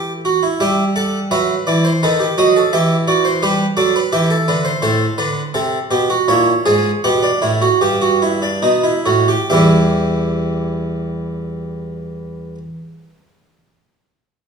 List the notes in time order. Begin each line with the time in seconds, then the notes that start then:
Already playing: E3 G4 E5
0.25 F#4
0.43 E4
0.60 G3 G4 E5
0.96 A4 F#5
1.31 F#3 B4 E5
1.67 E3 D5
1.85 C5
2.03 D#3 A4 B4
2.20 G4
2.38 F#3 F#4 D#5
2.56 A4
2.73 E3 G4 E5
3.08 F#4 D5
3.25 C5
3.43 G3 G4 B4
3.77 F#3 A4 D5
3.96 B4
4.12 E3 G4 E5
4.30 A4
4.48 D3 B4
4.65 C5
4.82 A2 A4 C5
5.18 D3 B4
5.54 C3 A4
5.91 B2 G4
6.10 F#4
6.28 A#2 E4 C#5
6.66 G#2 G#4
7.04 B2 G4 F#5
7.23 D4
7.42 A2 E4
7.62 F#4
7.81 G2 G4
8.02 F#4
8.22 E4
8.42 D4
8.62 B2 D#4
8.83 E4
9.06 A2 F#4
9.28 G4
9.50 E2 E3 G3 G4 E5